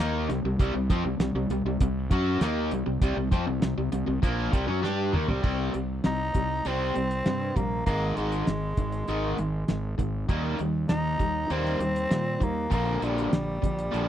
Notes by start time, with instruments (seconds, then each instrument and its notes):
0.00 fingered electric bass D#2, overdriven electric guitar D#3 A#3 D#4
0.30 fingered electric bass C2, overdriven electric guitar C3 G3, snare, closed hi-hat
0.44 fingered electric bass C2, overdriven electric guitar C3 G3
0.59 fingered electric bass C2, overdriven electric guitar C3 G3, kick, closed hi-hat
0.74 fingered electric bass C2, overdriven electric guitar C3 G3
0.90 fingered electric bass F2, overdriven electric guitar F3 C4, kick, closed hi-hat
1.04 fingered electric bass C2, overdriven electric guitar C3 G3
1.19 fingered electric bass C2, overdriven electric guitar C3 G3, snare, closed hi-hat
1.34 fingered electric bass C2, overdriven electric guitar C3 G3
1.49 fingered electric bass C2, overdriven electric guitar C3 G3, closed hi-hat
1.65 fingered electric bass C2, overdriven electric guitar C3 G3
1.80 fingered electric bass C2, overdriven electric guitar C3 G3, kick, closed hi-hat
2.11 fingered electric bass F#2, overdriven electric guitar F#3 C#4 F#4, kick, closed hi-hat
2.41 fingered electric bass D#2, overdriven electric guitar D#3 A#3 D#4, snare, closed hi-hat
2.71 fingered electric bass C2, overdriven electric guitar C3 G3, closed hi-hat
2.86 fingered electric bass C2, overdriven electric guitar C3 G3
3.01 fingered electric bass C2, overdriven electric guitar C3 G3, kick, closed hi-hat
3.17 fingered electric bass C2, overdriven electric guitar C3 G3
3.31 fingered electric bass F2, overdriven electric guitar F3 C4, kick, closed hi-hat
3.47 fingered electric bass C2, overdriven electric guitar C3 G3
3.62 fingered electric bass C2, overdriven electric guitar C3 G3, snare, closed hi-hat
3.78 fingered electric bass C2, overdriven electric guitar C3 G3
3.92 fingered electric bass C2, overdriven electric guitar C3 G3, closed hi-hat
4.06 fingered electric bass C2, overdriven electric guitar C3 G3
4.22 fingered electric bass A#1, overdriven electric guitar A#2 F3 A#3, kick, closed hi-hat
4.52 fingered electric bass C2, overdriven electric guitar C3 G3, kick, closed hi-hat
4.67 fingered electric bass F#2, overdriven electric guitar F#3 C#4
4.82 fingered electric bass G2, overdriven electric guitar G3 D4 G4, snare
5.12 fingered electric bass D#2, overdriven electric guitar D#3 A#3, mid tom
5.28 fingered electric bass C2, overdriven electric guitar C3 G3, floor tom
5.42 fingered electric bass C2, overdriven electric guitar C3 G3 C4, kick, crash
5.74 fingered electric bass C2, overdriven electric guitar C3 G3, closed hi-hat
6.04 fingered electric bass C2, overdriven electric guitar C3 G3, tenor saxophone D#4, snare, closed hi-hat
6.34 fingered electric bass C2, overdriven electric guitar C3 G3, kick, closed hi-hat
6.65 fingered electric bass C2, overdriven electric guitar C3 G3 C4, tenor saxophone C4, closed hi-hat
6.95 fingered electric bass C2, overdriven electric guitar C3 G3, closed hi-hat
7.11 closed hi-hat
7.26 fingered electric bass G2, overdriven electric guitar C3 G3, snare, closed hi-hat
7.56 fingered electric bass A#1, overdriven electric guitar C3 G3, tenor saxophone A#3, kick, closed hi-hat
7.86 fingered electric bass G#1, overdriven electric guitar G#2 D#3 G#3, tenor saxophone A#3, kick, closed hi-hat
8.16 fingered electric bass G#1, overdriven electric guitar G#2 D#3 G#3, tenor saxophone G#3, closed hi-hat
8.32 closed hi-hat
8.47 fingered electric bass G#1, overdriven electric guitar G#2 D#3, snare, closed hi-hat
8.77 fingered electric bass G#1, overdriven electric guitar G#2 D#3, kick, closed hi-hat
8.92 closed hi-hat
9.08 fingered electric bass G#1, overdriven electric guitar G#2 D#3 G#3, closed hi-hat
9.38 fingered electric bass G#1, overdriven electric guitar G#2 D#3, closed hi-hat
9.68 fingered electric bass G#1, overdriven electric guitar G#2 D#3, snare, closed hi-hat
9.98 fingered electric bass G#1, overdriven electric guitar G#2 D#3, kick, closed hi-hat
10.28 fingered electric bass D#2, overdriven electric guitar D#3 G3 A#3, kick, closed hi-hat
10.59 fingered electric bass D#2, overdriven electric guitar D#3 G3, closed hi-hat
10.89 fingered electric bass D#2, overdriven electric guitar D#3 G3, tenor saxophone D#4, snare, closed hi-hat
11.19 fingered electric bass D#2, overdriven electric guitar D#3 G3, kick, closed hi-hat
11.50 fingered electric bass D#2, overdriven electric guitar D#3 G3 A#3, tenor saxophone C4, closed hi-hat
11.65 snare
11.80 fingered electric bass D#2, overdriven electric guitar D#3 G3, closed hi-hat
11.96 closed hi-hat
12.11 fingered electric bass A#2, overdriven electric guitar D#3 G3, snare, closed hi-hat
12.40 fingered electric bass D#2, overdriven electric guitar D#3 G3, tenor saxophone A#3, kick, closed hi-hat
12.70 fingered electric bass A#1, overdriven electric guitar A#2 D3 F3, tenor saxophone A#3, kick, closed hi-hat
13.01 fingered electric bass A#1, overdriven electric guitar A#2 D3 F3, tenor saxophone G3, closed hi-hat
13.18 closed hi-hat
13.32 fingered electric bass A#1, overdriven electric guitar A#2 D3, snare, closed hi-hat
13.62 fingered electric bass A#1, overdriven electric guitar A#2 D3, kick, closed hi-hat
13.79 closed hi-hat
13.91 fingered electric bass A#1, overdriven electric guitar A#2 D3 F3, closed hi-hat